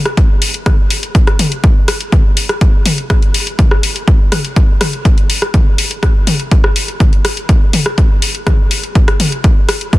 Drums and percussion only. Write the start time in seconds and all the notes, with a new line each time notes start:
0.05 cross-stick, closed hi-hat
0.17 kick, closed hi-hat
0.42 open hi-hat
0.54 closed hi-hat
0.66 kick, cross-stick, closed hi-hat, mid tom
0.91 open hi-hat
1.03 closed hi-hat
1.15 kick, closed hi-hat
1.27 cross-stick, closed hi-hat
1.39 open hi-hat, mid tom
1.52 closed hi-hat
1.64 kick, closed hi-hat
1.88 cross-stick, open hi-hat
2.01 closed hi-hat
2.12 kick, closed hi-hat, mid tom
2.37 open hi-hat
2.49 cross-stick, closed hi-hat
2.61 kick, closed hi-hat
2.86 open hi-hat, mid tom
2.98 closed hi-hat
3.10 kick, cross-stick, closed hi-hat
3.23 closed hi-hat
3.34 open hi-hat
3.47 closed hi-hat
3.59 kick, closed hi-hat, mid tom
3.71 cross-stick
3.83 open hi-hat
3.96 closed hi-hat
4.08 kick, closed hi-hat
4.32 cross-stick, open hi-hat, mid tom
4.45 closed hi-hat
4.56 kick, closed hi-hat
4.81 cross-stick, open hi-hat, mid tom
4.93 closed hi-hat
5.05 kick, closed hi-hat
5.18 closed hi-hat
5.30 open hi-hat
5.42 cross-stick, closed hi-hat
5.54 kick, closed hi-hat, mid tom
5.78 open hi-hat
5.91 closed hi-hat
6.03 kick, cross-stick, closed hi-hat
6.27 open hi-hat, mid tom
6.40 closed hi-hat
6.51 kick, closed hi-hat
6.64 cross-stick
6.76 open hi-hat
6.88 closed hi-hat
7.00 kick, closed hi-hat, mid tom
7.13 closed hi-hat
7.25 cross-stick, open hi-hat
7.37 closed hi-hat
7.49 kick, closed hi-hat
7.73 open hi-hat, mid tom
7.86 cross-stick
7.98 kick, closed hi-hat
8.22 open hi-hat
8.35 closed hi-hat
8.47 kick, cross-stick, closed hi-hat, mid tom
8.71 open hi-hat
8.83 closed hi-hat
8.95 kick, closed hi-hat
9.08 cross-stick, closed hi-hat
9.20 open hi-hat, mid tom
9.32 closed hi-hat
9.44 kick, closed hi-hat
9.69 cross-stick, open hi-hat
9.81 closed hi-hat
9.93 kick, closed hi-hat, mid tom